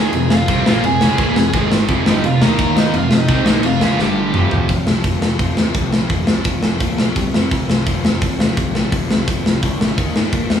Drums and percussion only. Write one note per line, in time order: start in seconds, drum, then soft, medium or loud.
0.13 crash medium
0.30 snare loud
0.48 kick loud
0.48 crash medium
0.66 snare loud
0.84 crash medium
1.01 snare loud
1.18 kick loud
1.18 crash medium
1.36 snare loud
1.54 kick loud
1.54 crash medium
1.72 snare loud
1.89 kick loud
1.89 crash medium
2.06 snare loud
2.24 crash medium
2.42 snare loud
2.59 kick loud
2.59 crash medium
2.77 snare loud
2.94 crash medium
3.11 snare loud
3.28 kick loud
3.28 crash medium
3.46 snare loud
3.63 crash medium
3.81 snare loud
3.99 snare medium
4.34 mid tom medium
4.51 floor tom medium
4.69 kick loud
4.69 open hi-hat medium
4.87 snare loud
5.04 kick loud
5.04 open hi-hat medium
5.22 snare loud
5.39 kick loud
5.39 open hi-hat medium
5.57 snare loud
5.75 kick loud
5.75 open hi-hat medium
5.93 snare medium
6.10 kick loud
6.10 open hi-hat medium
6.27 snare loud
6.44 kick loud
6.44 open hi-hat medium
6.63 snare loud
6.80 kick loud
6.80 open hi-hat medium
6.98 snare loud
7.16 kick loud
7.16 open hi-hat medium
7.34 snare loud
7.51 kick loud
7.51 open hi-hat medium
7.70 snare loud
7.87 kick loud
7.87 open hi-hat medium
8.05 snare loud
8.21 kick loud
8.21 open hi-hat medium
8.40 snare loud
8.57 kick loud
8.57 open hi-hat medium
8.75 snare loud
8.92 kick loud
8.92 open hi-hat medium
9.11 snare loud
9.28 kick loud
9.28 open hi-hat medium
9.46 snare loud
9.63 kick loud
9.63 open hi-hat medium
9.81 snare loud
9.98 kick loud
9.98 open hi-hat medium
10.16 snare loud
10.33 kick loud
10.33 open hi-hat medium
10.50 snare loud